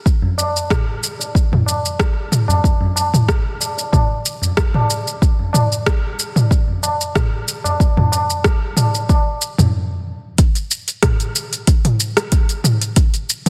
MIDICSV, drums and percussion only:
0, 0, Header, 1, 3, 480
1, 0, Start_track
1, 0, Tempo, 645161
1, 44, Time_signature, 4, 2, 24, 8
1, 10037, End_track
2, 0, Start_track
2, 0, Title_t, "Tabla"
2, 165, Note_on_c, 9, 64, 81
2, 239, Note_off_c, 9, 64, 0
2, 281, Note_on_c, 9, 60, 61
2, 281, Note_on_c, 9, 63, 55
2, 355, Note_off_c, 9, 60, 0
2, 355, Note_off_c, 9, 63, 0
2, 888, Note_on_c, 9, 63, 47
2, 963, Note_off_c, 9, 63, 0
2, 1131, Note_on_c, 9, 64, 73
2, 1205, Note_off_c, 9, 64, 0
2, 1237, Note_on_c, 9, 60, 53
2, 1312, Note_off_c, 9, 60, 0
2, 1845, Note_on_c, 9, 60, 62
2, 1850, Note_on_c, 9, 64, 84
2, 1920, Note_off_c, 9, 60, 0
2, 1925, Note_off_c, 9, 64, 0
2, 2087, Note_on_c, 9, 64, 92
2, 2162, Note_off_c, 9, 64, 0
2, 2201, Note_on_c, 9, 60, 61
2, 2202, Note_on_c, 9, 63, 63
2, 2276, Note_off_c, 9, 60, 0
2, 2276, Note_off_c, 9, 63, 0
2, 2682, Note_on_c, 9, 60, 35
2, 2756, Note_off_c, 9, 60, 0
2, 2808, Note_on_c, 9, 63, 52
2, 2883, Note_off_c, 9, 63, 0
2, 2920, Note_on_c, 9, 60, 53
2, 2994, Note_off_c, 9, 60, 0
2, 3286, Note_on_c, 9, 64, 85
2, 3360, Note_off_c, 9, 64, 0
2, 3537, Note_on_c, 9, 60, 61
2, 3611, Note_off_c, 9, 60, 0
2, 3775, Note_on_c, 9, 63, 37
2, 3849, Note_off_c, 9, 63, 0
2, 4011, Note_on_c, 9, 64, 77
2, 4085, Note_off_c, 9, 64, 0
2, 4114, Note_on_c, 9, 60, 62
2, 4121, Note_on_c, 9, 63, 61
2, 4188, Note_off_c, 9, 60, 0
2, 4196, Note_off_c, 9, 63, 0
2, 4729, Note_on_c, 9, 63, 49
2, 4804, Note_off_c, 9, 63, 0
2, 4968, Note_on_c, 9, 64, 76
2, 5042, Note_off_c, 9, 64, 0
2, 5081, Note_on_c, 9, 60, 55
2, 5156, Note_off_c, 9, 60, 0
2, 5687, Note_on_c, 9, 60, 69
2, 5689, Note_on_c, 9, 64, 69
2, 5761, Note_off_c, 9, 60, 0
2, 5763, Note_off_c, 9, 64, 0
2, 5928, Note_on_c, 9, 64, 92
2, 5934, Note_on_c, 9, 60, 42
2, 6003, Note_off_c, 9, 64, 0
2, 6009, Note_off_c, 9, 60, 0
2, 6040, Note_on_c, 9, 63, 68
2, 6042, Note_on_c, 9, 60, 65
2, 6114, Note_off_c, 9, 63, 0
2, 6116, Note_off_c, 9, 60, 0
2, 6528, Note_on_c, 9, 60, 40
2, 6602, Note_off_c, 9, 60, 0
2, 6656, Note_on_c, 9, 63, 56
2, 6731, Note_off_c, 9, 63, 0
2, 6766, Note_on_c, 9, 60, 55
2, 6841, Note_off_c, 9, 60, 0
2, 7135, Note_on_c, 9, 64, 94
2, 7209, Note_off_c, 9, 64, 0
2, 10037, End_track
3, 0, Start_track
3, 0, Title_t, "Drums"
3, 43, Note_on_c, 9, 36, 101
3, 49, Note_on_c, 9, 82, 35
3, 117, Note_off_c, 9, 36, 0
3, 123, Note_off_c, 9, 82, 0
3, 290, Note_on_c, 9, 82, 75
3, 364, Note_off_c, 9, 82, 0
3, 421, Note_on_c, 9, 82, 40
3, 495, Note_off_c, 9, 82, 0
3, 524, Note_on_c, 9, 36, 104
3, 528, Note_on_c, 9, 37, 100
3, 528, Note_on_c, 9, 45, 77
3, 532, Note_on_c, 9, 82, 33
3, 598, Note_off_c, 9, 36, 0
3, 602, Note_off_c, 9, 37, 0
3, 602, Note_off_c, 9, 45, 0
3, 607, Note_off_c, 9, 82, 0
3, 770, Note_on_c, 9, 82, 71
3, 844, Note_off_c, 9, 82, 0
3, 900, Note_on_c, 9, 82, 41
3, 975, Note_off_c, 9, 82, 0
3, 1004, Note_on_c, 9, 36, 90
3, 1014, Note_on_c, 9, 82, 33
3, 1079, Note_off_c, 9, 36, 0
3, 1088, Note_off_c, 9, 82, 0
3, 1138, Note_on_c, 9, 45, 79
3, 1212, Note_off_c, 9, 45, 0
3, 1252, Note_on_c, 9, 82, 71
3, 1327, Note_off_c, 9, 82, 0
3, 1380, Note_on_c, 9, 82, 43
3, 1455, Note_off_c, 9, 82, 0
3, 1484, Note_on_c, 9, 36, 99
3, 1486, Note_on_c, 9, 37, 92
3, 1491, Note_on_c, 9, 82, 31
3, 1559, Note_off_c, 9, 36, 0
3, 1561, Note_off_c, 9, 37, 0
3, 1565, Note_off_c, 9, 82, 0
3, 1726, Note_on_c, 9, 45, 74
3, 1731, Note_on_c, 9, 82, 75
3, 1801, Note_off_c, 9, 45, 0
3, 1805, Note_off_c, 9, 82, 0
3, 1860, Note_on_c, 9, 82, 43
3, 1935, Note_off_c, 9, 82, 0
3, 1964, Note_on_c, 9, 36, 94
3, 1972, Note_on_c, 9, 82, 34
3, 2039, Note_off_c, 9, 36, 0
3, 2046, Note_off_c, 9, 82, 0
3, 2210, Note_on_c, 9, 82, 72
3, 2284, Note_off_c, 9, 82, 0
3, 2334, Note_on_c, 9, 45, 73
3, 2338, Note_on_c, 9, 82, 42
3, 2408, Note_off_c, 9, 45, 0
3, 2413, Note_off_c, 9, 82, 0
3, 2444, Note_on_c, 9, 36, 96
3, 2445, Note_on_c, 9, 37, 90
3, 2449, Note_on_c, 9, 82, 31
3, 2518, Note_off_c, 9, 36, 0
3, 2519, Note_off_c, 9, 37, 0
3, 2524, Note_off_c, 9, 82, 0
3, 2687, Note_on_c, 9, 82, 71
3, 2762, Note_off_c, 9, 82, 0
3, 2817, Note_on_c, 9, 82, 40
3, 2891, Note_off_c, 9, 82, 0
3, 2924, Note_on_c, 9, 36, 93
3, 2925, Note_on_c, 9, 45, 78
3, 2929, Note_on_c, 9, 82, 33
3, 2998, Note_off_c, 9, 36, 0
3, 2999, Note_off_c, 9, 45, 0
3, 3004, Note_off_c, 9, 82, 0
3, 3167, Note_on_c, 9, 82, 68
3, 3241, Note_off_c, 9, 82, 0
3, 3297, Note_on_c, 9, 82, 43
3, 3371, Note_off_c, 9, 82, 0
3, 3401, Note_on_c, 9, 37, 98
3, 3403, Note_on_c, 9, 36, 86
3, 3406, Note_on_c, 9, 82, 33
3, 3476, Note_off_c, 9, 37, 0
3, 3478, Note_off_c, 9, 36, 0
3, 3480, Note_off_c, 9, 82, 0
3, 3529, Note_on_c, 9, 45, 78
3, 3603, Note_off_c, 9, 45, 0
3, 3647, Note_on_c, 9, 82, 67
3, 3721, Note_off_c, 9, 82, 0
3, 3775, Note_on_c, 9, 82, 39
3, 3850, Note_off_c, 9, 82, 0
3, 3883, Note_on_c, 9, 36, 93
3, 3888, Note_on_c, 9, 82, 33
3, 3958, Note_off_c, 9, 36, 0
3, 3962, Note_off_c, 9, 82, 0
3, 4123, Note_on_c, 9, 45, 80
3, 4128, Note_on_c, 9, 82, 72
3, 4198, Note_off_c, 9, 45, 0
3, 4202, Note_off_c, 9, 82, 0
3, 4257, Note_on_c, 9, 82, 39
3, 4332, Note_off_c, 9, 82, 0
3, 4363, Note_on_c, 9, 36, 94
3, 4363, Note_on_c, 9, 37, 99
3, 4368, Note_on_c, 9, 82, 31
3, 4438, Note_off_c, 9, 36, 0
3, 4438, Note_off_c, 9, 37, 0
3, 4442, Note_off_c, 9, 82, 0
3, 4608, Note_on_c, 9, 82, 74
3, 4683, Note_off_c, 9, 82, 0
3, 4732, Note_on_c, 9, 45, 78
3, 4737, Note_on_c, 9, 82, 40
3, 4807, Note_off_c, 9, 45, 0
3, 4811, Note_off_c, 9, 82, 0
3, 4842, Note_on_c, 9, 36, 97
3, 4850, Note_on_c, 9, 82, 33
3, 4917, Note_off_c, 9, 36, 0
3, 4924, Note_off_c, 9, 82, 0
3, 5085, Note_on_c, 9, 82, 71
3, 5160, Note_off_c, 9, 82, 0
3, 5215, Note_on_c, 9, 82, 41
3, 5289, Note_off_c, 9, 82, 0
3, 5323, Note_on_c, 9, 36, 97
3, 5324, Note_on_c, 9, 37, 94
3, 5324, Note_on_c, 9, 45, 81
3, 5329, Note_on_c, 9, 82, 32
3, 5397, Note_off_c, 9, 36, 0
3, 5398, Note_off_c, 9, 37, 0
3, 5398, Note_off_c, 9, 45, 0
3, 5403, Note_off_c, 9, 82, 0
3, 5566, Note_on_c, 9, 82, 71
3, 5640, Note_off_c, 9, 82, 0
3, 5696, Note_on_c, 9, 82, 43
3, 5771, Note_off_c, 9, 82, 0
3, 5803, Note_on_c, 9, 36, 94
3, 5810, Note_on_c, 9, 82, 33
3, 5878, Note_off_c, 9, 36, 0
3, 5884, Note_off_c, 9, 82, 0
3, 5932, Note_on_c, 9, 45, 74
3, 6007, Note_off_c, 9, 45, 0
3, 6048, Note_on_c, 9, 82, 68
3, 6122, Note_off_c, 9, 82, 0
3, 6175, Note_on_c, 9, 82, 43
3, 6250, Note_off_c, 9, 82, 0
3, 6282, Note_on_c, 9, 37, 95
3, 6284, Note_on_c, 9, 36, 97
3, 6287, Note_on_c, 9, 82, 32
3, 6357, Note_off_c, 9, 37, 0
3, 6359, Note_off_c, 9, 36, 0
3, 6361, Note_off_c, 9, 82, 0
3, 6522, Note_on_c, 9, 45, 74
3, 6527, Note_on_c, 9, 82, 74
3, 6596, Note_off_c, 9, 45, 0
3, 6601, Note_off_c, 9, 82, 0
3, 6655, Note_on_c, 9, 82, 40
3, 6730, Note_off_c, 9, 82, 0
3, 6765, Note_on_c, 9, 36, 93
3, 6767, Note_on_c, 9, 82, 32
3, 6840, Note_off_c, 9, 36, 0
3, 6841, Note_off_c, 9, 82, 0
3, 7005, Note_on_c, 9, 82, 70
3, 7080, Note_off_c, 9, 82, 0
3, 7131, Note_on_c, 9, 45, 79
3, 7135, Note_on_c, 9, 82, 42
3, 7205, Note_off_c, 9, 45, 0
3, 7210, Note_off_c, 9, 82, 0
3, 7725, Note_on_c, 9, 42, 74
3, 7726, Note_on_c, 9, 36, 104
3, 7730, Note_on_c, 9, 82, 46
3, 7800, Note_off_c, 9, 42, 0
3, 7801, Note_off_c, 9, 36, 0
3, 7804, Note_off_c, 9, 82, 0
3, 7852, Note_on_c, 9, 42, 30
3, 7856, Note_on_c, 9, 82, 30
3, 7926, Note_off_c, 9, 42, 0
3, 7931, Note_off_c, 9, 82, 0
3, 7969, Note_on_c, 9, 82, 78
3, 8043, Note_off_c, 9, 82, 0
3, 8093, Note_on_c, 9, 42, 31
3, 8097, Note_on_c, 9, 82, 33
3, 8167, Note_off_c, 9, 42, 0
3, 8172, Note_off_c, 9, 82, 0
3, 8203, Note_on_c, 9, 37, 84
3, 8203, Note_on_c, 9, 42, 68
3, 8203, Note_on_c, 9, 45, 79
3, 8206, Note_on_c, 9, 36, 101
3, 8207, Note_on_c, 9, 82, 47
3, 8277, Note_off_c, 9, 37, 0
3, 8277, Note_off_c, 9, 42, 0
3, 8277, Note_off_c, 9, 45, 0
3, 8280, Note_off_c, 9, 36, 0
3, 8282, Note_off_c, 9, 82, 0
3, 8332, Note_on_c, 9, 42, 34
3, 8337, Note_on_c, 9, 82, 30
3, 8407, Note_off_c, 9, 42, 0
3, 8411, Note_off_c, 9, 82, 0
3, 8449, Note_on_c, 9, 82, 75
3, 8524, Note_off_c, 9, 82, 0
3, 8576, Note_on_c, 9, 42, 33
3, 8580, Note_on_c, 9, 82, 32
3, 8650, Note_off_c, 9, 42, 0
3, 8655, Note_off_c, 9, 82, 0
3, 8685, Note_on_c, 9, 42, 69
3, 8686, Note_on_c, 9, 36, 98
3, 8690, Note_on_c, 9, 82, 44
3, 8760, Note_off_c, 9, 42, 0
3, 8761, Note_off_c, 9, 36, 0
3, 8764, Note_off_c, 9, 82, 0
3, 8815, Note_on_c, 9, 42, 44
3, 8815, Note_on_c, 9, 45, 76
3, 8890, Note_off_c, 9, 42, 0
3, 8890, Note_off_c, 9, 45, 0
3, 8928, Note_on_c, 9, 82, 81
3, 9002, Note_off_c, 9, 82, 0
3, 9053, Note_on_c, 9, 37, 84
3, 9053, Note_on_c, 9, 42, 32
3, 9057, Note_on_c, 9, 82, 33
3, 9127, Note_off_c, 9, 37, 0
3, 9127, Note_off_c, 9, 42, 0
3, 9132, Note_off_c, 9, 82, 0
3, 9165, Note_on_c, 9, 42, 72
3, 9166, Note_on_c, 9, 36, 94
3, 9169, Note_on_c, 9, 82, 43
3, 9239, Note_off_c, 9, 42, 0
3, 9241, Note_off_c, 9, 36, 0
3, 9244, Note_off_c, 9, 82, 0
3, 9293, Note_on_c, 9, 42, 31
3, 9298, Note_on_c, 9, 82, 33
3, 9368, Note_off_c, 9, 42, 0
3, 9372, Note_off_c, 9, 82, 0
3, 9405, Note_on_c, 9, 45, 73
3, 9410, Note_on_c, 9, 82, 76
3, 9480, Note_off_c, 9, 45, 0
3, 9484, Note_off_c, 9, 82, 0
3, 9534, Note_on_c, 9, 42, 48
3, 9539, Note_on_c, 9, 82, 33
3, 9609, Note_off_c, 9, 42, 0
3, 9613, Note_off_c, 9, 82, 0
3, 9644, Note_on_c, 9, 42, 72
3, 9646, Note_on_c, 9, 36, 100
3, 9649, Note_on_c, 9, 82, 51
3, 9719, Note_off_c, 9, 42, 0
3, 9720, Note_off_c, 9, 36, 0
3, 9723, Note_off_c, 9, 82, 0
3, 9774, Note_on_c, 9, 42, 30
3, 9778, Note_on_c, 9, 82, 30
3, 9848, Note_off_c, 9, 42, 0
3, 9852, Note_off_c, 9, 82, 0
3, 9893, Note_on_c, 9, 82, 81
3, 9967, Note_off_c, 9, 82, 0
3, 10037, End_track
0, 0, End_of_file